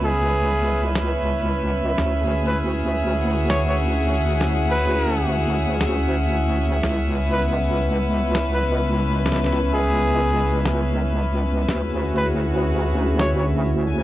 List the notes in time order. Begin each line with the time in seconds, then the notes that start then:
Already playing: C#2 C#3 B3 C#4 E4 B4 E5
0.04 G#4
0.95 snare
1.98 D2 D3 C#4 F#4 G#4, snare
2.20 G#4
2.47 B4
3.18 F#5
3.49 C#5, snare
3.68 C#5
4.41 snare
4.71 B4
5.81 snare
6.83 C#2 C#3 B3 C#4, snare
7.12 B4
7.32 B4
8.35 snare
8.54 B4
9.26 snare
9.32 snare
9.36 snare
9.44 snare
9.46 snare
9.52 snare
9.74 G#4
10.65 snare
11.68 D2 D3 C#4 E4 F#4 G#4, snare
11.95 F#4
12.17 B4
13.19 C#5, snare
13.38 C#5
13.88 G#5